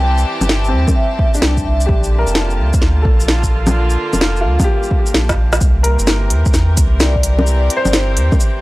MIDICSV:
0, 0, Header, 1, 6, 480
1, 0, Start_track
1, 0, Tempo, 465116
1, 29, Time_signature, 4, 2, 24, 8
1, 8888, End_track
2, 0, Start_track
2, 0, Title_t, "Vibraphone"
2, 0, Program_c, 0, 11
2, 0, Note_on_c, 0, 79, 90
2, 193, Note_off_c, 0, 79, 0
2, 989, Note_on_c, 0, 76, 85
2, 1089, Note_off_c, 0, 76, 0
2, 1148, Note_on_c, 0, 76, 74
2, 1200, Note_off_c, 0, 76, 0
2, 1707, Note_on_c, 0, 76, 81
2, 2010, Note_off_c, 0, 76, 0
2, 7233, Note_on_c, 0, 74, 90
2, 7331, Note_off_c, 0, 74, 0
2, 7389, Note_on_c, 0, 74, 76
2, 7440, Note_off_c, 0, 74, 0
2, 7467, Note_on_c, 0, 74, 84
2, 7568, Note_off_c, 0, 74, 0
2, 7627, Note_on_c, 0, 74, 76
2, 7679, Note_off_c, 0, 74, 0
2, 8888, End_track
3, 0, Start_track
3, 0, Title_t, "Upright piano"
3, 0, Program_c, 1, 0
3, 0, Control_c, 1, 64, 127
3, 0, Note_on_c, 1, 55, 51
3, 708, Note_on_c, 1, 60, 54
3, 1388, Note_on_c, 1, 62, 53
3, 1838, Note_off_c, 1, 60, 0
3, 1917, Note_on_c, 1, 67, 57
3, 1963, Control_c, 1, 64, 0
3, 1966, Note_off_c, 1, 55, 0
3, 2146, Note_off_c, 1, 62, 0
3, 2154, Control_c, 1, 64, 127
3, 2172, Note_off_c, 1, 67, 0
3, 2256, Note_on_c, 1, 70, 69
3, 3117, Note_on_c, 1, 69, 53
3, 3357, Note_off_c, 1, 70, 0
3, 4246, Note_off_c, 1, 69, 0
3, 4549, Note_on_c, 1, 65, 52
3, 4789, Note_on_c, 1, 67, 80
3, 5679, Note_off_c, 1, 65, 0
3, 5800, Control_c, 1, 64, 0
3, 5921, Note_off_c, 1, 67, 0
3, 6001, Control_c, 1, 64, 127
3, 6018, Note_on_c, 1, 70, 75
3, 7146, Note_off_c, 1, 70, 0
3, 8014, Note_on_c, 1, 72, 80
3, 8888, Note_off_c, 1, 72, 0
3, 8888, End_track
4, 0, Start_track
4, 0, Title_t, "String section"
4, 0, Program_c, 2, 48
4, 0, Note_on_c, 2, 52, 75
4, 0, Note_on_c, 2, 60, 90
4, 0, Note_on_c, 2, 67, 83
4, 0, Note_on_c, 2, 81, 86
4, 1938, Note_on_c, 2, 50, 73
4, 1952, Note_off_c, 2, 52, 0
4, 2165, Note_on_c, 2, 58, 87
4, 2368, Note_on_c, 2, 65, 88
4, 3120, Note_off_c, 2, 67, 0
4, 3288, Note_off_c, 2, 60, 0
4, 5782, Note_off_c, 2, 65, 0
4, 5783, Note_off_c, 2, 50, 0
4, 5787, Note_on_c, 2, 52, 68
4, 5791, Note_off_c, 2, 81, 0
4, 5922, Note_on_c, 2, 60, 77
4, 6095, Note_on_c, 2, 70, 78
4, 6362, Note_on_c, 2, 67, 83
4, 7350, Note_off_c, 2, 58, 0
4, 8888, Note_off_c, 2, 52, 0
4, 8888, Note_off_c, 2, 60, 0
4, 8888, Note_off_c, 2, 67, 0
4, 8888, Note_off_c, 2, 70, 0
4, 8888, End_track
5, 0, Start_track
5, 0, Title_t, "Sub bass"
5, 0, Program_c, 3, 38
5, 0, Note_on_c, 3, 36, 93
5, 257, Note_off_c, 3, 36, 0
5, 417, Note_on_c, 3, 31, 99
5, 742, Note_on_c, 3, 40, 87
5, 757, Note_off_c, 3, 31, 0
5, 889, Note_off_c, 3, 40, 0
5, 1466, Note_on_c, 3, 36, 75
5, 1694, Note_off_c, 3, 36, 0
5, 1706, Note_on_c, 3, 36, 78
5, 1934, Note_off_c, 3, 36, 0
5, 1947, Note_on_c, 3, 34, 97
5, 2324, Note_off_c, 3, 34, 0
5, 2341, Note_on_c, 3, 29, 101
5, 2664, Note_on_c, 3, 38, 83
5, 2679, Note_off_c, 3, 29, 0
5, 2810, Note_off_c, 3, 38, 0
5, 2907, Note_on_c, 3, 38, 90
5, 3146, Note_on_c, 3, 34, 95
5, 3162, Note_off_c, 3, 38, 0
5, 4097, Note_off_c, 3, 34, 0
5, 4265, Note_on_c, 3, 29, 104
5, 4581, Note_on_c, 3, 38, 87
5, 4596, Note_off_c, 3, 29, 0
5, 4728, Note_off_c, 3, 38, 0
5, 5301, Note_on_c, 3, 34, 78
5, 5531, Note_off_c, 3, 34, 0
5, 5539, Note_on_c, 3, 34, 76
5, 5770, Note_off_c, 3, 34, 0
5, 5789, Note_on_c, 3, 36, 97
5, 6165, Note_off_c, 3, 36, 0
5, 6182, Note_on_c, 3, 31, 102
5, 6502, Note_on_c, 3, 40, 87
5, 6517, Note_off_c, 3, 31, 0
5, 6649, Note_off_c, 3, 40, 0
5, 6741, Note_on_c, 3, 40, 93
5, 6991, Note_on_c, 3, 36, 98
5, 7006, Note_off_c, 3, 40, 0
5, 7939, Note_off_c, 3, 36, 0
5, 8100, Note_on_c, 3, 31, 98
5, 8425, Note_on_c, 3, 40, 90
5, 8440, Note_off_c, 3, 31, 0
5, 8570, Note_off_c, 3, 40, 0
5, 8888, End_track
6, 0, Start_track
6, 0, Title_t, "Drums"
6, 184, Note_on_c, 9, 82, 39
6, 287, Note_off_c, 9, 82, 0
6, 426, Note_on_c, 9, 61, 34
6, 426, Note_on_c, 9, 82, 55
6, 508, Note_on_c, 9, 40, 97
6, 529, Note_off_c, 9, 61, 0
6, 529, Note_off_c, 9, 82, 0
6, 611, Note_off_c, 9, 40, 0
6, 665, Note_on_c, 9, 82, 30
6, 768, Note_off_c, 9, 82, 0
6, 905, Note_on_c, 9, 36, 107
6, 906, Note_on_c, 9, 61, 36
6, 906, Note_on_c, 9, 82, 54
6, 1008, Note_off_c, 9, 36, 0
6, 1010, Note_off_c, 9, 61, 0
6, 1010, Note_off_c, 9, 82, 0
6, 1229, Note_on_c, 9, 36, 97
6, 1332, Note_off_c, 9, 36, 0
6, 1385, Note_on_c, 9, 82, 47
6, 1465, Note_on_c, 9, 40, 102
6, 1488, Note_off_c, 9, 82, 0
6, 1568, Note_off_c, 9, 40, 0
6, 1623, Note_on_c, 9, 82, 41
6, 1625, Note_on_c, 9, 36, 54
6, 1726, Note_off_c, 9, 82, 0
6, 1728, Note_off_c, 9, 36, 0
6, 1863, Note_on_c, 9, 82, 49
6, 1949, Note_on_c, 9, 36, 105
6, 1967, Note_off_c, 9, 82, 0
6, 2052, Note_off_c, 9, 36, 0
6, 2102, Note_on_c, 9, 82, 45
6, 2205, Note_off_c, 9, 82, 0
6, 2343, Note_on_c, 9, 82, 56
6, 2425, Note_on_c, 9, 40, 93
6, 2446, Note_off_c, 9, 82, 0
6, 2528, Note_off_c, 9, 40, 0
6, 2582, Note_on_c, 9, 82, 29
6, 2685, Note_off_c, 9, 82, 0
6, 2821, Note_on_c, 9, 82, 52
6, 2826, Note_on_c, 9, 36, 102
6, 2906, Note_on_c, 9, 40, 53
6, 2924, Note_off_c, 9, 82, 0
6, 2929, Note_off_c, 9, 36, 0
6, 3010, Note_off_c, 9, 40, 0
6, 3149, Note_on_c, 9, 36, 87
6, 3252, Note_off_c, 9, 36, 0
6, 3303, Note_on_c, 9, 82, 52
6, 3388, Note_on_c, 9, 40, 95
6, 3406, Note_off_c, 9, 82, 0
6, 3492, Note_off_c, 9, 40, 0
6, 3545, Note_on_c, 9, 36, 56
6, 3545, Note_on_c, 9, 82, 42
6, 3648, Note_off_c, 9, 36, 0
6, 3648, Note_off_c, 9, 82, 0
6, 3784, Note_on_c, 9, 61, 55
6, 3784, Note_on_c, 9, 82, 53
6, 3888, Note_off_c, 9, 61, 0
6, 3888, Note_off_c, 9, 82, 0
6, 4024, Note_on_c, 9, 82, 45
6, 4127, Note_off_c, 9, 82, 0
6, 4264, Note_on_c, 9, 61, 38
6, 4264, Note_on_c, 9, 82, 55
6, 4346, Note_on_c, 9, 40, 102
6, 4367, Note_off_c, 9, 61, 0
6, 4367, Note_off_c, 9, 82, 0
6, 4450, Note_off_c, 9, 40, 0
6, 4502, Note_on_c, 9, 82, 30
6, 4605, Note_off_c, 9, 82, 0
6, 4744, Note_on_c, 9, 36, 102
6, 4744, Note_on_c, 9, 61, 36
6, 4744, Note_on_c, 9, 82, 59
6, 4847, Note_off_c, 9, 36, 0
6, 4847, Note_off_c, 9, 61, 0
6, 4847, Note_off_c, 9, 82, 0
6, 4985, Note_on_c, 9, 82, 30
6, 5068, Note_on_c, 9, 36, 90
6, 5089, Note_off_c, 9, 82, 0
6, 5171, Note_off_c, 9, 36, 0
6, 5225, Note_on_c, 9, 82, 54
6, 5308, Note_on_c, 9, 40, 102
6, 5328, Note_off_c, 9, 82, 0
6, 5411, Note_off_c, 9, 40, 0
6, 5463, Note_on_c, 9, 38, 69
6, 5463, Note_on_c, 9, 82, 42
6, 5466, Note_on_c, 9, 36, 54
6, 5566, Note_off_c, 9, 38, 0
6, 5566, Note_off_c, 9, 82, 0
6, 5569, Note_off_c, 9, 36, 0
6, 5703, Note_on_c, 9, 38, 89
6, 5703, Note_on_c, 9, 82, 58
6, 5788, Note_off_c, 9, 82, 0
6, 5788, Note_on_c, 9, 82, 62
6, 5790, Note_on_c, 9, 36, 109
6, 5807, Note_off_c, 9, 38, 0
6, 5892, Note_off_c, 9, 82, 0
6, 5893, Note_off_c, 9, 36, 0
6, 6027, Note_on_c, 9, 46, 72
6, 6130, Note_off_c, 9, 46, 0
6, 6183, Note_on_c, 9, 82, 62
6, 6266, Note_off_c, 9, 82, 0
6, 6266, Note_on_c, 9, 40, 109
6, 6266, Note_on_c, 9, 82, 59
6, 6369, Note_off_c, 9, 40, 0
6, 6369, Note_off_c, 9, 82, 0
6, 6504, Note_on_c, 9, 46, 77
6, 6608, Note_off_c, 9, 46, 0
6, 6662, Note_on_c, 9, 82, 32
6, 6667, Note_on_c, 9, 36, 111
6, 6746, Note_off_c, 9, 82, 0
6, 6746, Note_on_c, 9, 40, 59
6, 6746, Note_on_c, 9, 82, 56
6, 6770, Note_off_c, 9, 36, 0
6, 6849, Note_off_c, 9, 40, 0
6, 6849, Note_off_c, 9, 82, 0
6, 6988, Note_on_c, 9, 46, 78
6, 6988, Note_on_c, 9, 82, 61
6, 6990, Note_on_c, 9, 36, 98
6, 7091, Note_off_c, 9, 46, 0
6, 7091, Note_off_c, 9, 82, 0
6, 7093, Note_off_c, 9, 36, 0
6, 7225, Note_on_c, 9, 40, 104
6, 7225, Note_on_c, 9, 82, 57
6, 7329, Note_off_c, 9, 40, 0
6, 7329, Note_off_c, 9, 82, 0
6, 7386, Note_on_c, 9, 36, 57
6, 7465, Note_on_c, 9, 46, 77
6, 7489, Note_off_c, 9, 36, 0
6, 7568, Note_off_c, 9, 46, 0
6, 7623, Note_on_c, 9, 61, 54
6, 7705, Note_on_c, 9, 82, 58
6, 7726, Note_off_c, 9, 61, 0
6, 7808, Note_off_c, 9, 82, 0
6, 7948, Note_on_c, 9, 46, 73
6, 8051, Note_off_c, 9, 46, 0
6, 8105, Note_on_c, 9, 61, 38
6, 8105, Note_on_c, 9, 82, 60
6, 8186, Note_off_c, 9, 82, 0
6, 8186, Note_on_c, 9, 40, 108
6, 8186, Note_on_c, 9, 82, 55
6, 8208, Note_off_c, 9, 61, 0
6, 8289, Note_off_c, 9, 40, 0
6, 8289, Note_off_c, 9, 82, 0
6, 8428, Note_on_c, 9, 46, 69
6, 8531, Note_off_c, 9, 46, 0
6, 8588, Note_on_c, 9, 36, 117
6, 8588, Note_on_c, 9, 61, 38
6, 8588, Note_on_c, 9, 82, 33
6, 8670, Note_off_c, 9, 82, 0
6, 8670, Note_on_c, 9, 82, 60
6, 8691, Note_off_c, 9, 36, 0
6, 8691, Note_off_c, 9, 61, 0
6, 8773, Note_off_c, 9, 82, 0
6, 8888, End_track
0, 0, End_of_file